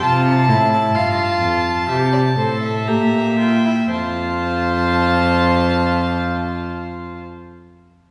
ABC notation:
X:1
M:4/4
L:1/16
Q:1/4=57
K:F
V:1 name="Violin"
a12 b2 g2 | a16 |]
V:2 name="Violin"
a4 f4 e d c e4- e | c16 |]
V:3 name="Viola"
F2 E2 F4 G2 A2 G2 F E | F16 |]
V:4 name="Cello" clef=bass
C,2 A,,2 G,,2 F,,2 C,2 A,,2 B,,4 | F,,16 |]